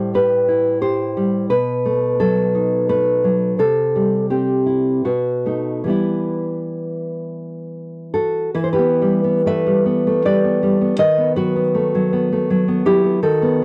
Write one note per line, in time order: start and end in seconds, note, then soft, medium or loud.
0.00 1.46 A2 medium
0.00 0.82 G3 soft
0.00 0.13 C5 medium
0.14 0.80 G4 soft
0.14 0.79 B4 medium
0.48 1.50 E4 soft
0.81 1.50 G4 medium
0.81 1.47 C5 medium
1.17 1.51 G3 medium
1.50 3.56 B2 medium
1.50 2.18 B4 medium
1.85 2.88 A3 soft
2.20 3.23 F#3 soft
2.20 2.87 A4 medium
2.55 3.59 D#4 soft
2.89 3.59 A3 soft
2.89 3.57 B4 medium
3.24 3.60 F#3 soft
3.59 5.03 C3 medium
3.59 4.28 A4 medium
3.96 5.07 G3 soft
4.30 5.07 C4 soft
4.30 5.04 G4 medium
4.66 5.06 E4 soft
5.05 5.89 B2 medium
5.05 5.87 F#4 medium
5.46 5.87 A3 soft
5.46 5.86 D#4 soft
5.84 8.49 E3 medium
5.84 8.50 G3 soft
5.84 8.14 B3 soft
5.90 8.10 E4 medium
8.14 8.54 F#4 soft
8.14 8.54 A4 medium
8.55 10.93 E3 medium
8.55 8.63 B4 medium
8.64 8.72 C5 medium
8.73 9.41 G4 medium
8.73 9.42 B4 medium
8.78 9.23 B3 medium
9.02 9.65 G3 medium
9.24 9.46 B3 medium
9.46 10.06 A3 soft
9.46 9.85 B4 medium
9.46 10.21 E5 medium
9.67 10.24 G3 medium
9.86 10.26 B3 medium
10.07 11.00 A3 soft
10.25 10.62 G3 medium
10.25 10.44 B4 medium
10.25 10.97 D5 medium
10.44 10.80 B3 medium
10.63 10.99 G3 medium
10.81 10.99 B3 medium
10.98 13.17 D#3 medium
10.98 11.34 B4 medium
10.98 11.35 D#5 medium
11.18 11.55 B3 medium
11.36 11.94 F#3 medium
11.36 12.81 F#4 medium
11.36 12.80 B4 medium
11.56 12.12 B3 medium
11.75 12.31 A3 medium
11.95 12.49 F#3 medium
12.13 12.67 B3 medium
12.32 13.22 A3 medium
12.50 12.84 F#3 medium
12.68 13.03 B3 medium
12.86 13.22 F#3 medium
12.86 13.20 E4 medium
12.86 13.20 G4 medium
13.04 13.22 B3 medium
13.23 13.64 D#3 medium
13.23 13.64 F#4 medium
13.23 13.64 A4 medium
13.42 13.64 B3 medium